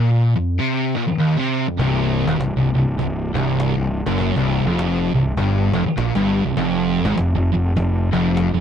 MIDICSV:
0, 0, Header, 1, 7, 480
1, 0, Start_track
1, 0, Key_signature, -3, "minor"
1, 0, Tempo, 598205
1, 1439, Time_signature, 4, 2, 24, 8
1, 6904, End_track
2, 0, Start_track
2, 0, Title_t, "Distorted electric guitar"
2, 0, Program_c, 0, 30
2, 0, Note_on_c, 0, 46, 109
2, 276, Note_off_c, 0, 46, 0
2, 285, Note_on_c, 0, 41, 77
2, 438, Note_off_c, 0, 41, 0
2, 469, Note_on_c, 0, 48, 109
2, 756, Note_off_c, 0, 48, 0
2, 767, Note_on_c, 0, 46, 102
2, 857, Note_off_c, 0, 46, 0
2, 947, Note_on_c, 0, 39, 108
2, 1090, Note_off_c, 0, 39, 0
2, 1097, Note_on_c, 0, 48, 97
2, 1335, Note_off_c, 0, 48, 0
2, 1343, Note_on_c, 0, 41, 76
2, 1438, Note_off_c, 0, 41, 0
2, 1442, Note_on_c, 0, 36, 121
2, 1821, Note_off_c, 0, 36, 0
2, 1826, Note_on_c, 0, 39, 99
2, 1915, Note_off_c, 0, 39, 0
2, 1930, Note_on_c, 0, 36, 80
2, 2063, Note_off_c, 0, 36, 0
2, 2073, Note_on_c, 0, 36, 70
2, 2210, Note_off_c, 0, 36, 0
2, 2220, Note_on_c, 0, 36, 79
2, 2367, Note_off_c, 0, 36, 0
2, 2406, Note_on_c, 0, 36, 74
2, 2636, Note_off_c, 0, 36, 0
2, 2690, Note_on_c, 0, 36, 114
2, 3016, Note_off_c, 0, 36, 0
2, 3025, Note_on_c, 0, 36, 69
2, 3227, Note_off_c, 0, 36, 0
2, 3263, Note_on_c, 0, 42, 111
2, 3495, Note_off_c, 0, 42, 0
2, 3507, Note_on_c, 0, 36, 102
2, 3740, Note_off_c, 0, 36, 0
2, 3749, Note_on_c, 0, 41, 105
2, 4123, Note_off_c, 0, 41, 0
2, 4128, Note_on_c, 0, 36, 83
2, 4280, Note_off_c, 0, 36, 0
2, 4311, Note_on_c, 0, 43, 113
2, 4597, Note_off_c, 0, 43, 0
2, 4601, Note_on_c, 0, 41, 117
2, 4692, Note_off_c, 0, 41, 0
2, 4787, Note_on_c, 0, 46, 105
2, 4929, Note_off_c, 0, 46, 0
2, 4934, Note_on_c, 0, 43, 98
2, 5173, Note_off_c, 0, 43, 0
2, 5180, Note_on_c, 0, 36, 79
2, 5269, Note_off_c, 0, 36, 0
2, 5272, Note_on_c, 0, 41, 118
2, 5654, Note_off_c, 0, 41, 0
2, 5661, Note_on_c, 0, 44, 100
2, 5751, Note_off_c, 0, 44, 0
2, 5758, Note_on_c, 0, 41, 76
2, 5897, Note_off_c, 0, 41, 0
2, 5907, Note_on_c, 0, 41, 73
2, 6037, Note_off_c, 0, 41, 0
2, 6047, Note_on_c, 0, 41, 74
2, 6198, Note_off_c, 0, 41, 0
2, 6232, Note_on_c, 0, 41, 78
2, 6466, Note_off_c, 0, 41, 0
2, 6519, Note_on_c, 0, 41, 112
2, 6846, Note_off_c, 0, 41, 0
2, 6856, Note_on_c, 0, 41, 75
2, 6904, Note_off_c, 0, 41, 0
2, 6904, End_track
3, 0, Start_track
3, 0, Title_t, "Fingered electric bass"
3, 0, Program_c, 1, 33
3, 1437, Note_on_c, 1, 24, 94
3, 1797, Note_off_c, 1, 24, 0
3, 1827, Note_on_c, 1, 27, 89
3, 1914, Note_off_c, 1, 27, 0
3, 1918, Note_on_c, 1, 24, 76
3, 2054, Note_off_c, 1, 24, 0
3, 2061, Note_on_c, 1, 24, 89
3, 2193, Note_off_c, 1, 24, 0
3, 2198, Note_on_c, 1, 24, 81
3, 2380, Note_off_c, 1, 24, 0
3, 2395, Note_on_c, 1, 24, 81
3, 2668, Note_off_c, 1, 24, 0
3, 2686, Note_on_c, 1, 24, 107
3, 2999, Note_off_c, 1, 24, 0
3, 3026, Note_on_c, 1, 24, 86
3, 3249, Note_off_c, 1, 24, 0
3, 3259, Note_on_c, 1, 30, 94
3, 3485, Note_off_c, 1, 30, 0
3, 3496, Note_on_c, 1, 24, 98
3, 3723, Note_off_c, 1, 24, 0
3, 3731, Note_on_c, 1, 29, 101
3, 4095, Note_off_c, 1, 29, 0
3, 4123, Note_on_c, 1, 24, 87
3, 4302, Note_off_c, 1, 24, 0
3, 4307, Note_on_c, 1, 31, 104
3, 4583, Note_off_c, 1, 31, 0
3, 4601, Note_on_c, 1, 29, 102
3, 4693, Note_off_c, 1, 29, 0
3, 4800, Note_on_c, 1, 34, 111
3, 4931, Note_off_c, 1, 34, 0
3, 4936, Note_on_c, 1, 31, 105
3, 5162, Note_off_c, 1, 31, 0
3, 5182, Note_on_c, 1, 24, 80
3, 5264, Note_off_c, 1, 24, 0
3, 5269, Note_on_c, 1, 29, 92
3, 5631, Note_off_c, 1, 29, 0
3, 5653, Note_on_c, 1, 32, 93
3, 5745, Note_off_c, 1, 32, 0
3, 5754, Note_on_c, 1, 29, 79
3, 5891, Note_off_c, 1, 29, 0
3, 5896, Note_on_c, 1, 29, 90
3, 6034, Note_off_c, 1, 29, 0
3, 6044, Note_on_c, 1, 29, 81
3, 6221, Note_off_c, 1, 29, 0
3, 6229, Note_on_c, 1, 29, 87
3, 6502, Note_off_c, 1, 29, 0
3, 6521, Note_on_c, 1, 29, 96
3, 6835, Note_off_c, 1, 29, 0
3, 6859, Note_on_c, 1, 29, 84
3, 6904, Note_off_c, 1, 29, 0
3, 6904, End_track
4, 0, Start_track
4, 0, Title_t, "Cajon"
4, 1440, Note_on_c, 9, 36, 104
4, 1520, Note_off_c, 9, 36, 0
4, 1826, Note_on_c, 9, 36, 114
4, 1906, Note_off_c, 9, 36, 0
4, 1929, Note_on_c, 9, 38, 117
4, 2010, Note_off_c, 9, 38, 0
4, 2399, Note_on_c, 9, 36, 96
4, 2480, Note_off_c, 9, 36, 0
4, 2690, Note_on_c, 9, 36, 106
4, 2770, Note_off_c, 9, 36, 0
4, 2887, Note_on_c, 9, 38, 118
4, 2967, Note_off_c, 9, 38, 0
4, 3261, Note_on_c, 9, 36, 110
4, 3341, Note_off_c, 9, 36, 0
4, 3355, Note_on_c, 9, 36, 98
4, 3435, Note_off_c, 9, 36, 0
4, 3500, Note_on_c, 9, 36, 92
4, 3580, Note_off_c, 9, 36, 0
4, 3843, Note_on_c, 9, 38, 113
4, 3923, Note_off_c, 9, 38, 0
4, 4311, Note_on_c, 9, 36, 116
4, 4391, Note_off_c, 9, 36, 0
4, 4601, Note_on_c, 9, 36, 111
4, 4681, Note_off_c, 9, 36, 0
4, 4795, Note_on_c, 9, 38, 112
4, 4875, Note_off_c, 9, 38, 0
4, 4935, Note_on_c, 9, 36, 106
4, 5016, Note_off_c, 9, 36, 0
4, 5271, Note_on_c, 9, 36, 111
4, 5351, Note_off_c, 9, 36, 0
4, 5656, Note_on_c, 9, 36, 121
4, 5737, Note_off_c, 9, 36, 0
4, 5756, Note_on_c, 9, 38, 112
4, 5837, Note_off_c, 9, 38, 0
4, 6231, Note_on_c, 9, 36, 98
4, 6312, Note_off_c, 9, 36, 0
4, 6523, Note_on_c, 9, 36, 104
4, 6603, Note_off_c, 9, 36, 0
4, 6716, Note_on_c, 9, 38, 110
4, 6796, Note_off_c, 9, 38, 0
4, 6904, End_track
5, 0, Start_track
5, 0, Title_t, "Muted distorted electric guitar strokes"
5, 860, Note_on_c, 9, 29, 62
5, 941, Note_off_c, 9, 29, 0
5, 4695, Note_on_c, 9, 29, 61
5, 4775, Note_off_c, 9, 29, 0
5, 6904, End_track
6, 0, Start_track
6, 0, Title_t, "Muted fingered electric bass strokes"
6, 4702, Note_on_c, 9, 29, 45
6, 4782, Note_off_c, 9, 29, 0
6, 6904, End_track
7, 0, Start_track
7, 0, Title_t, "Muted overdriven electric guitar strokes"
7, 867, Note_on_c, 9, 29, 55
7, 948, Note_off_c, 9, 29, 0
7, 4708, Note_on_c, 9, 29, 59
7, 4788, Note_off_c, 9, 29, 0
7, 6904, End_track
0, 0, End_of_file